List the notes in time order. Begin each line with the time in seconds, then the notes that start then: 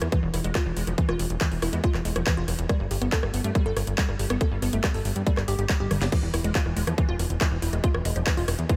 0.02 E2, cross-stick, closed hi-hat
0.12 E3, kick, closed hi-hat
0.23 E1 E3
0.34 E1 E4, cross-stick, open hi-hat
0.44 E1 G#3, closed hi-hat
0.55 F4, kick, cross-stick, clap, closed hi-hat
0.66 E1 E3
0.77 E1 G#3, open hi-hat
0.87 E1 F3, cross-stick, closed hi-hat
0.98 E3, kick, closed hi-hat
1.09 E1 F4, cross-stick
1.19 E1, open hi-hat
1.30 E1, closed hi-hat
1.41 E3, kick, cross-stick, clap, closed hi-hat
1.52 E1 E3, open hi-hat
1.62 E1 E4, cross-stick, open hi-hat
1.73 E2 G#3, closed hi-hat
1.84 F4, kick, closed hi-hat
1.94 E1 E3, cross-stick, clap
2.05 E1 G#3, open hi-hat
2.16 E1 F3, cross-stick, closed hi-hat
2.27 E3, kick, clap, closed hi-hat
2.37 E1 F4
2.48 E1, cross-stick, open hi-hat
2.59 E1, closed hi-hat
2.69 G3, kick, cross-stick, closed hi-hat
2.80 G1 G3
2.91 G1 G4, open hi-hat
3.02 G1 B3, cross-stick, closed hi-hat
3.12 A4, kick, clap, closed hi-hat
3.23 G1 G3, cross-stick
3.34 G1 B3, open hi-hat
3.44 G2 A3, closed hi-hat
3.55 G3, kick, cross-stick, closed hi-hat
3.66 G1 A4
3.77 G1, cross-stick, open hi-hat
3.87 G1, closed hi-hat
3.98 G3, kick, clap, closed hi-hat
4.09 G1 G3, cross-stick
4.19 G1 G4, open hi-hat
4.30 G1 B3, cross-stick, closed hi-hat
4.41 A4, kick, closed hi-hat
4.52 G1 G3
4.62 G1 B3, cross-stick, open hi-hat
4.73 G1 A3, closed hi-hat
4.84 G3, kick, cross-stick, clap, closed hi-hat
4.94 G1 A4, open hi-hat
5.05 G1, open hi-hat
5.16 G2, closed hi-hat
5.27 G3, kick, closed hi-hat
5.37 G1 G3, cross-stick, clap
5.48 G1 G4, open hi-hat
5.59 G1 G4, closed hi-hat
5.69 G3, kick, cross-stick, clap, closed hi-hat
5.80 G1 G4, high tom
5.91 G1 G3, cross-stick, open hi-hat, mid tom
6.02 G1 G4, snare, closed hi-hat
6.12 E3, kick, cross-stick, closed hi-hat, crash
6.23 E1 E3
6.34 E1 E4, cross-stick, open hi-hat
6.44 E1 G#3, closed hi-hat
6.55 F4, kick, clap, closed hi-hat
6.66 E1 E3, cross-stick
6.76 E1 G#3, open hi-hat
6.87 E2 F3, cross-stick, closed hi-hat
6.98 E3, kick, closed hi-hat
7.09 E1 F4
7.19 E1, cross-stick, open hi-hat
7.30 E1, closed hi-hat
7.41 E3, kick, cross-stick, clap, closed hi-hat
7.52 E1 E3
7.62 E1 E4, open hi-hat
7.73 E1 G#3, cross-stick, closed hi-hat
7.84 F4, kick, closed hi-hat
7.94 E1 E3, cross-stick
8.05 E1 G#3, open hi-hat
8.16 E1 F3, closed hi-hat
8.27 E3, kick, cross-stick, clap, closed hi-hat
8.37 E1 F4, open hi-hat
8.48 E1, cross-stick, open hi-hat
8.59 E2, closed hi-hat
8.69 E3, kick, closed hi-hat